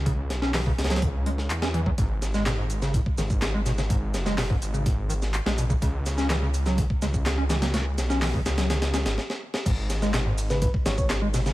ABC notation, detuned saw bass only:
X:1
M:4/4
L:1/16
Q:1/4=125
K:C#dor
V:1 name="Detuned saw bass" clef=bass
C,,2 B,,,3 z C,,6 E,,3 z | G,,,8 z2 G,,,6- | G,,,2 F,,,3 z G,,,6 z A,,,2 z | C,,8 z2 C,,6- |
C,,2 B,,,3 z C,,4- C,, G,,, z4 | G,,,8 z2 G,,,6 |]